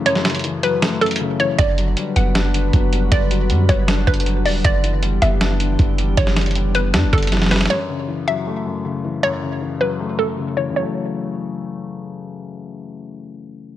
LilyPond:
<<
  \new Staff \with { instrumentName = "Synth pluck" } { \time 4/4 \key fis \phrygian \tempo 4 = 157 cis''4. b'4 a'4 cis''8 | d''4. fis''2~ fis''8 | d''4. cis''4 b'4 d''8 | d''4. e''2~ e''8 |
cis''4. b'4 a'4 b'8 | cis''4. e''2~ e''8 | cis''4. b'4 a'4 cis''8 | cis''2. r4 |
r1 | }
  \new Staff \with { instrumentName = "Ambient pad" } { \time 4/4 \key fis \phrygian r1 | <b fis' b'>1~ | <b fis' b'>1 | <e d' g'>1~ |
<e d' g'>1 | r1 | r1 | r1 |
r1 | }
  \new Staff \with { instrumentName = "Felt piano" } { \clef bass \time 4/4 \key fis \phrygian <fis, cis e a>8 cis8 e8 fis8 a8 fis,8 cis8 e8 | d8 fis8 g8 b8 d'8 d8 fis8 g8 | d8 fis8 g8 b8 d'8 d8 fis8 g8 | d8 e8 g8 b8 d'8 d8 e8 g8 |
d8 e8 g8 b8 d'8 d8 e8 g8 | fis,8 cis8 e8 fis8 a8 fis,8 cis8 e8 | fis,8 cis8 e8 fis8 a8 fis,8 cis8 e8 | <cis e fis a>1~ |
<cis e fis a>1 | }
  \new Staff \with { instrumentName = "808-style bass" } { \clef bass \time 4/4 \key fis \phrygian r1 | fis,,4 r8 fis,,4. fis,,4 | fis,,4 fis,8 fis,,4 fis,,4 e,,8 | fis,,4. fis,,4. fis,,4 |
fis,,2 fis,16 fis,,16 fis,,4. | r1 | r1 | r1 |
r1 | }
  \new DrumStaff \with { instrumentName = "Drums" } \drummode { \time 4/4 hh16 sn16 <hh sn>32 hh32 hh32 hh32 hh8 hh8 <hh sn>8 hh32 hh32 hh32 hh32 r4 | <hh bd>8 hh8 hh8 hh8 <hh sn>8 hh8 <hh bd>8 hh8 | <hh bd>8 hh8 hh8 <hh bd>8 \tuplet 3/2 { <hh sn>16 r16 r16 <hh bd>16 hh16 hh16 } hh8 hho8 | <hh bd>8 hh8 hh8 hh8 <hh sn>8 hh8 <hh bd>8 hh8 |
<hh bd>16 sn16 <hh sn>32 hh32 hh32 hh32 hh8 hh8 <hh sn>8 <hh bd>32 hh32 hh32 hh32 <hh sn>32 sn32 sn32 sn32 <hho sn>32 sn32 sn32 sn32 | r4 r4 r4 r4 | r4 r4 r4 r4 | r4 r4 r4 r4 |
r4 r4 r4 r4 | }
>>